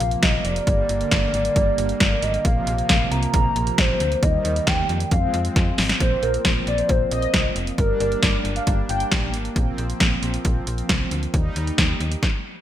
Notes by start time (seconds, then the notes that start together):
Already playing: C3 F3 A#3 F5
0.00 A#1, closed hi-hat
0.11 closed hi-hat
0.23 A#1 D#5, kick, snare, closed hi-hat
0.45 F1 D5, closed hi-hat
0.56 closed hi-hat
0.67 G1 D3 G3, kick, closed hi-hat
0.89 G1, closed hi-hat
1.01 closed hi-hat
1.11 G1, kick, snare, closed hi-hat
1.34 G#1, closed hi-hat
1.45 closed hi-hat
1.56 G1, kick, closed hi-hat
1.78 G1, closed hi-hat
1.89 closed hi-hat
2.00 G1, kick, snare, closed hi-hat
2.23 G#1 D#5, closed hi-hat
2.34 closed hi-hat
2.45 A#1 C3 F3 F5, kick, closed hi-hat
2.67 A#1, closed hi-hat
2.78 closed hi-hat
2.89 A#1 F5, kick, snare, closed hi-hat
3.12 C2 A#5, closed hi-hat
3.23 closed hi-hat
3.34 A#1, kick, closed hi-hat
3.56 A#1, closed hi-hat
3.67 closed hi-hat
3.78 A#1 C5, kick, snare, closed hi-hat
4.00 D2, closed hi-hat
4.12 closed hi-hat
4.23 D#2 D#3 G3 D#5, kick, closed hi-hat
4.45 D#2, closed hi-hat
4.56 closed hi-hat
4.67 D#2 G5, kick, snare, closed hi-hat
4.89 F2, closed hi-hat
5.00 closed hi-hat
5.11 F2 F3 G#3 C4 F5, kick, closed hi-hat
5.34 F2, closed hi-hat
5.45 closed hi-hat
5.56 F2, kick, snare, closed hi-hat
5.78 G#1, snare, open hi-hat
5.89 snare, closed hi-hat
6.00 A#1 F3 A#3 C4 C5, kick, closed hi-hat
6.23 A#1 A#4, closed hi-hat
6.34 closed hi-hat
6.45 A#1 C5, kick, snare, closed hi-hat
6.67 A#1 D5, closed hi-hat
6.78 C5, closed hi-hat
6.89 A#1 C5, kick, closed hi-hat
7.11 A#1 D#5, closed hi-hat
7.22 closed hi-hat
7.34 C2, kick, snare, closed hi-hat
7.56 F1, closed hi-hat
7.67 closed hi-hat
7.78 G1 G3 A#3 D4 A#4, kick, closed hi-hat
8.00 G1 A#4 D5, closed hi-hat
8.12 closed hi-hat
8.23 G1 D5, kick, snare, closed hi-hat
8.45 G1, closed hi-hat
8.56 F5, closed hi-hat
8.67 G1, kick, closed hi-hat
8.89 G1 G5, closed hi-hat
9.00 closed hi-hat
9.12 A#1, kick, snare, closed hi-hat
9.34 G#1, closed hi-hat
9.45 closed hi-hat
9.56 A#1 F3 C4, kick, closed hi-hat
9.78 A#1, closed hi-hat
9.90 closed hi-hat
10.00 A#1, kick, snare, closed hi-hat
10.23 A#1, closed hi-hat
10.34 closed hi-hat
10.45 A#1, kick, closed hi-hat
10.67 A#1, closed hi-hat
10.78 closed hi-hat
10.89 C2, kick, snare, closed hi-hat
11.11 D2, closed hi-hat
11.23 closed hi-hat
11.34 D#2 G3 D#4, kick, closed hi-hat
11.56 D#2, closed hi-hat
11.67 closed hi-hat
11.78 D#2, kick, snare, closed hi-hat
12.00 D#2, closed hi-hat
12.12 closed hi-hat
12.23 kick, snare